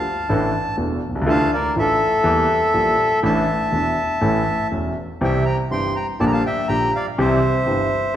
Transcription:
0.00 0.28 F5 medium
0.00 0.76 A5 loud
0.29 0.50 A1 medium
0.29 0.50 A2 medium
0.29 0.50 E3 medium
0.29 0.50 A3 medium
0.29 0.50 D4 medium
0.29 0.50 A4 medium
0.77 0.98 E1 medium
0.77 0.98 E2 medium
0.77 0.98 E3 medium
0.77 0.98 A3 medium
0.77 0.98 D4 medium
0.77 0.98 A4 medium
1.09 1.15 B1 medium
1.15 1.21 C2 medium
1.22 1.27 C#2 medium
1.26 1.47 D2 loud
1.26 1.47 D3 loud
1.26 1.47 E3 medium
1.26 1.47 A3 medium
1.26 1.47 D4 medium
1.26 1.47 F4 medium
1.26 1.51 A5 loud
1.30 1.51 F5 medium
1.54 1.75 A#4 medium
1.54 1.75 D5 loud
1.75 1.96 A1 medium
1.75 1.96 A2 medium
1.75 1.96 E3 medium
1.75 1.96 A3 medium
1.75 1.96 D4 medium
1.75 1.96 F4 medium
1.75 3.20 E5 loud
1.80 3.20 A4 medium
2.23 2.44 E2 loud
2.23 2.44 E3 medium
2.23 2.44 G3 medium
2.23 2.44 A#3 medium
2.23 2.44 G4 medium
2.73 2.94 A#1 medium
2.73 2.94 A#2 medium
2.73 2.94 E3 medium
2.73 2.94 G3 soft
2.73 2.94 A#3 soft
2.73 2.94 G4 medium
3.23 3.43 A1 loud
3.23 3.43 A2 loud
3.23 3.43 E3 medium
3.23 3.43 A3 medium
3.23 3.43 D4 medium
3.23 3.43 A4 medium
3.23 4.67 E5 medium
3.23 4.68 A5 loud
3.71 3.92 E1 medium
3.71 3.92 E2 medium
3.71 3.92 E3 medium
3.71 3.92 A3 soft
3.71 3.92 D4 medium
3.71 3.92 A4 medium
4.21 4.42 A1 medium
4.21 4.41 A2 medium
4.21 4.42 E3 medium
4.21 4.42 A3 medium
4.21 4.42 C#4 medium
4.21 4.42 A4 medium
4.71 4.92 E1 medium
4.71 4.92 E2 medium
4.71 4.92 E3 soft
4.71 4.92 A3 soft
4.71 4.92 C#4 soft
4.71 4.92 A4 medium
5.21 5.41 C2 medium
5.21 5.41 C3 medium
5.21 5.41 E3 medium
5.21 5.41 G3 medium
5.21 5.42 C4 medium
5.21 5.42 G4 medium
5.21 5.45 E5 medium
5.21 5.45 G5 loud
5.46 5.58 G5 medium
5.46 5.56 A#5 loud
5.71 5.91 G1 medium
5.71 5.91 G2 medium
5.71 5.91 E3 medium
5.71 5.91 G3 soft
5.71 5.91 C4 soft
5.71 5.91 G4 medium
5.71 5.94 G5 medium
5.71 5.96 C6 loud
5.96 6.07 G5 medium
5.96 6.06 A#5 medium
6.20 6.40 A#1 medium
6.20 6.40 A#2 medium
6.20 6.40 D3 medium
6.20 6.40 G3 medium
6.20 6.40 A#3 medium
6.20 6.40 G4 medium
6.20 6.25 D5 medium
6.20 6.25 A5 loud
6.27 6.32 A#5 medium
6.32 6.44 F5 medium
6.32 6.43 A5 medium
6.46 6.68 E5 medium
6.46 6.67 G5 loud
6.68 6.89 A#1 medium
6.68 6.89 A#2 medium
6.68 6.89 D3 medium
6.68 6.89 G3 soft
6.68 6.89 A#3 medium
6.68 6.89 G4 medium
6.68 6.91 G5 medium
6.68 6.93 A#5 loud
6.95 7.07 D5 medium
6.95 7.06 F5 loud
7.18 7.38 C2 loud
7.18 7.38 C3 loud
7.18 7.38 E3 medium
7.18 7.38 G3 medium
7.18 7.38 C4 medium
7.18 7.38 G4 medium
7.18 8.16 C5 medium
7.18 8.16 E5 medium
7.66 7.86 G1 medium
7.66 7.86 G2 medium
7.66 7.86 E3 medium
7.66 7.86 G3 soft
7.66 7.86 C4 soft
7.66 7.87 G4 medium

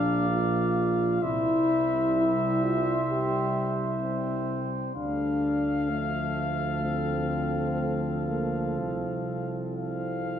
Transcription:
0.00 1.19 A#1 medium
0.00 1.19 A#3 medium
0.00 0.28 D4 medium
0.00 1.19 D5 medium
0.00 1.24 F5 medium
0.30 1.24 F4 medium
1.21 4.64 C2 medium
1.21 5.58 G3 medium
1.21 2.15 E4 medium
1.21 4.92 C5 medium
1.21 4.68 E5 medium
2.16 2.64 E4 medium
2.63 2.95 F4 medium
3.09 3.73 G4 medium
4.02 4.92 C4 medium
4.96 8.79 D2 medium
4.96 5.91 D4 medium
4.96 10.39 A4 medium
4.96 9.61 F5 medium
5.89 10.39 F3 medium
5.89 6.83 A3 medium
6.83 8.29 C4 medium
8.28 8.76 A#3 medium
8.77 10.39 C2 soft
8.77 10.39 C4 medium
9.74 10.39 F5 soft

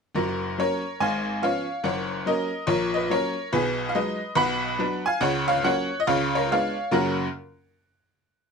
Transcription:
0.15 0.51 F#1 soft
0.15 0.51 F#2 medium
0.15 0.55 F#4 soft
0.15 0.58 A#4 medium
0.58 0.81 F#3 soft
0.58 0.82 A#3 soft
0.58 0.82 C#4 soft
0.58 0.98 A#4 soft
0.58 1.01 C#5 medium
1.00 1.36 G#1 medium
1.00 1.36 G#2 medium
1.00 1.40 F5 medium
1.00 1.42 G#5 medium
1.42 1.66 F3 soft
1.42 1.66 B3 soft
1.42 1.66 C#4 soft
1.42 1.82 C#5 medium
1.42 1.85 F5 medium
1.84 2.20 F#1 medium
1.84 2.20 F#2 soft
1.84 2.24 C#5 medium
1.84 2.26 F#5 medium
2.26 2.49 F#3 soft
2.26 2.50 A#3 soft
2.26 2.51 C#4 soft
2.26 2.67 A#4 medium
2.26 2.69 D#5 medium
2.67 3.04 A#1 medium
2.67 3.04 A#2 medium
2.67 2.93 A#4 medium
2.67 2.95 C#5 medium
2.94 3.10 B4 medium
2.94 3.10 D#5 medium
3.10 3.34 F#3 soft
3.10 3.34 A#3 soft
3.10 3.35 C#4 soft
3.10 3.51 A#4 medium
3.10 3.54 C#5 medium
3.52 3.89 B1 medium
3.52 3.89 B2 medium
3.52 3.89 G#4 medium
3.52 3.91 B4 medium
3.89 3.95 F5 medium
3.95 4.19 F#3 soft
3.95 4.19 G#3 soft
3.95 4.19 D#4 soft
3.95 4.35 B4 medium
3.95 4.38 D#5 medium
4.35 4.73 B1 medium
4.35 4.73 B2 medium
4.35 5.03 F#5 medium
4.35 5.06 B5 loud
4.79 5.03 F#3 medium
4.79 5.04 B3 soft
4.79 5.03 D4 medium
5.06 5.22 F5 medium
5.06 5.23 G#5 medium
5.21 5.58 C#2 medium
5.21 5.58 C#3 medium
5.21 5.48 C#5 medium
5.21 5.49 F#5 medium
5.48 5.64 C#5 medium
5.48 5.65 F5 loud
5.64 5.88 F#3 soft
5.64 5.89 A#3 soft
5.64 5.88 C#4 medium
5.64 5.98 C#5 medium
5.64 6.00 F#5 medium
6.00 6.08 D#5 medium
6.07 6.44 C#2 medium
6.07 6.44 C#3 medium
6.07 6.34 C#5 medium
6.07 6.34 F5 medium
6.35 6.51 A#4 medium
6.35 6.51 C#5 medium
6.52 6.75 G#3 soft
6.52 6.75 B3 soft
6.52 6.75 D4 soft
6.52 6.92 C#5 medium
6.52 6.94 F5 medium
6.91 7.20 F#2 medium
6.91 7.20 C#3 medium
6.91 7.20 A#3 medium
6.91 7.21 C#4 medium
6.91 7.20 F#4 medium
6.91 7.21 A#4 medium
6.91 7.21 F#5 soft

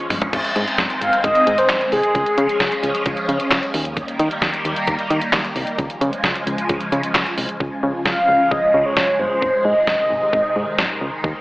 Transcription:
0.00 0.31 F3 medium
0.00 0.31 G#3 medium
0.00 0.31 C#4 medium
0.10 0.20 G1 medium
0.10 mid tom medium
0.10 open hi-hat medium
0.22 closed hi-hat soft
0.22 floor tom loud
0.33 0.42 G#1 loud
0.33 2.13 D#3 medium
0.33 3.70 G#3 medium
0.33 2.13 C4 medium
0.33 kick loud
0.33 closed hi-hat medium
0.33 crash medium
0.45 closed hi-hat medium
0.56 0.65 G#2 loud
0.56 closed hi-hat medium
0.67 closed hi-hat soft
0.78 0.88 G#1 loud
0.78 kick loud
0.78 snare loud
0.78 closed hi-hat medium
0.90 closed hi-hat soft
1.01 1.10 G#1 loud
1.01 1.22 F5 loud
1.01 closed hi-hat medium
1.13 closed hi-hat medium
1.24 1.33 G#1 loud
1.24 1.60 D#5 loud
1.24 kick loud
1.24 closed hi-hat medium
1.35 closed hi-hat soft
1.47 1.56 G#2 loud
1.47 closed hi-hat medium
1.58 1.92 C5 loud
1.58 closed hi-hat medium
1.69 1.79 G#1 loud
1.69 kick loud
1.69 snare loud
1.69 clap medium
1.69 closed hi-hat medium
1.81 closed hi-hat medium
1.92 2.01 C2 loud
1.92 3.25 G#4 loud
1.92 open hi-hat medium
2.03 closed hi-hat soft
2.15 2.24 C#2 loud
2.15 3.72 F3 medium
2.15 3.72 C#4 medium
2.15 kick loud
2.15 closed hi-hat medium
2.26 closed hi-hat medium
2.38 2.47 C#3 loud
2.38 closed hi-hat medium
2.49 closed hi-hat soft
2.60 2.69 C#2 loud
2.60 kick loud
2.60 snare loud
2.60 closed hi-hat medium
2.72 closed hi-hat soft
2.83 2.92 C#2 loud
2.83 closed hi-hat medium
2.95 closed hi-hat medium
3.06 3.15 C#2 loud
3.06 kick loud
3.06 closed hi-hat medium
3.17 closed hi-hat soft
3.29 3.38 C#3 medium
3.29 closed hi-hat medium
3.40 closed hi-hat medium
3.51 3.61 C#2 loud
3.51 kick loud
3.51 snare loud
3.51 clap loud
3.51 closed hi-hat medium
3.63 closed hi-hat medium
3.74 4.02 D#2 loud
3.74 5.76 D#3 medium
3.74 5.76 G3 medium
3.74 5.76 A#3 medium
3.74 open hi-hat medium
3.85 closed hi-hat soft
3.97 kick loud
3.97 closed hi-hat medium
4.08 closed hi-hat medium
4.19 4.29 D#3 loud
4.19 closed hi-hat medium
4.31 closed hi-hat soft
4.42 4.51 D#2 loud
4.42 kick loud
4.42 snare loud
4.42 closed hi-hat medium
4.54 closed hi-hat medium
4.65 4.74 D#2 medium
4.65 closed hi-hat medium
4.76 closed hi-hat medium
4.87 4.97 D#2 loud
4.87 kick loud
4.87 closed hi-hat medium
4.99 closed hi-hat soft
5.10 5.20 D#3 loud
5.10 closed hi-hat medium
5.21 closed hi-hat medium
5.33 5.42 D#2 loud
5.33 kick loud
5.33 snare loud
5.33 clap loud
5.33 closed hi-hat medium
5.45 closed hi-hat soft
5.56 5.65 C2 loud
5.56 open hi-hat medium
5.67 closed hi-hat soft
5.78 5.88 C#2 loud
5.78 7.59 C#3 medium
5.78 7.59 F3 medium
5.78 7.59 G#3 medium
5.78 kick loud
5.78 closed hi-hat medium
5.90 closed hi-hat medium
6.01 6.10 C#3 loud
6.01 closed hi-hat medium
6.13 closed hi-hat soft
6.24 6.33 C#2 loud
6.24 kick loud
6.24 snare loud
6.24 closed hi-hat medium
6.35 closed hi-hat medium
6.47 6.56 C#2 loud
6.47 closed hi-hat medium
6.58 closed hi-hat medium
6.69 6.79 C#2 loud
6.69 kick loud
6.69 closed hi-hat medium
6.80 closed hi-hat soft
6.92 7.01 C#3 loud
6.92 closed hi-hat medium
7.03 closed hi-hat medium
7.15 7.24 C#2 loud
7.15 kick loud
7.15 snare loud
7.15 clap loud
7.15 closed hi-hat medium
7.26 closed hi-hat soft
7.38 7.47 C2 loud
7.38 open hi-hat medium
7.49 closed hi-hat soft
7.60 7.70 C#2 loud
7.60 9.40 C#3 medium
7.60 9.40 F3 medium
7.60 11.20 G#3 medium
7.60 kick loud
7.83 7.92 C#3 medium
8.05 8.15 C#2 medium
8.05 8.53 F5 loud
8.05 kick loud
8.05 snare loud
8.29 8.38 C#2 loud
8.51 8.61 C#2 loud
8.51 8.87 D#5 loud
8.51 kick loud
8.74 8.83 C#3 loud
8.86 9.21 C#5 loud
8.97 9.06 C#2 medium
8.97 kick loud
8.97 snare loud
9.19 9.29 G1 medium
9.19 9.67 C5 loud
9.42 9.51 G#1 loud
9.42 11.22 C3 medium
9.42 11.41 D#3 medium
9.42 kick loud
9.65 9.74 G#2 loud
9.65 9.87 D#5 medium
9.87 9.97 G#1 loud
9.87 10.97 D#5 medium
9.87 kick loud
9.87 snare loud
10.10 10.20 G#1 loud
10.33 10.42 G#1 loud
10.33 kick loud
10.56 10.65 G#2 loud
10.79 10.88 G#1 loud
10.79 kick loud
10.79 snare loud
11.01 11.11 C#2 medium
11.24 11.33 D#2 loud
11.24 11.41 F3 medium
11.24 11.41 G3 medium
11.24 11.41 A#3 medium
11.24 11.41 F4 medium
11.24 kick loud

